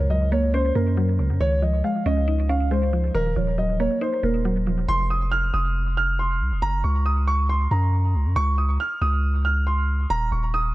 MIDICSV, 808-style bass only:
0, 0, Header, 1, 2, 480
1, 0, Start_track
1, 0, Tempo, 434783
1, 1553, Time_signature, 4, 2, 24, 8
1, 11865, End_track
2, 0, Start_track
2, 0, Title_t, "808-style bass"
2, 0, Program_c, 0, 38
2, 0, Note_on_c, 0, 37, 106
2, 795, Note_off_c, 0, 37, 0
2, 834, Note_on_c, 0, 42, 107
2, 1314, Note_on_c, 0, 37, 100
2, 1330, Note_off_c, 0, 42, 0
2, 1434, Note_on_c, 0, 42, 92
2, 1450, Note_off_c, 0, 37, 0
2, 1547, Note_off_c, 0, 42, 0
2, 1553, Note_on_c, 0, 37, 111
2, 2014, Note_off_c, 0, 37, 0
2, 2274, Note_on_c, 0, 37, 103
2, 3429, Note_off_c, 0, 37, 0
2, 3474, Note_on_c, 0, 27, 108
2, 3704, Note_off_c, 0, 27, 0
2, 3714, Note_on_c, 0, 27, 107
2, 4290, Note_off_c, 0, 27, 0
2, 4674, Note_on_c, 0, 27, 108
2, 5365, Note_off_c, 0, 27, 0
2, 5393, Note_on_c, 0, 29, 112
2, 6085, Note_off_c, 0, 29, 0
2, 6114, Note_on_c, 0, 29, 106
2, 7073, Note_on_c, 0, 36, 100
2, 7090, Note_off_c, 0, 29, 0
2, 7193, Note_on_c, 0, 29, 98
2, 7210, Note_off_c, 0, 36, 0
2, 7307, Note_off_c, 0, 29, 0
2, 7313, Note_on_c, 0, 30, 112
2, 7544, Note_off_c, 0, 30, 0
2, 7554, Note_on_c, 0, 37, 113
2, 8475, Note_off_c, 0, 37, 0
2, 8514, Note_on_c, 0, 42, 106
2, 8993, Note_on_c, 0, 37, 99
2, 9010, Note_off_c, 0, 42, 0
2, 9113, Note_on_c, 0, 42, 96
2, 9130, Note_off_c, 0, 37, 0
2, 9227, Note_off_c, 0, 42, 0
2, 9234, Note_on_c, 0, 37, 115
2, 9694, Note_off_c, 0, 37, 0
2, 9954, Note_on_c, 0, 37, 102
2, 11109, Note_off_c, 0, 37, 0
2, 11153, Note_on_c, 0, 27, 111
2, 11384, Note_off_c, 0, 27, 0
2, 11394, Note_on_c, 0, 27, 109
2, 11865, Note_off_c, 0, 27, 0
2, 11865, End_track
0, 0, End_of_file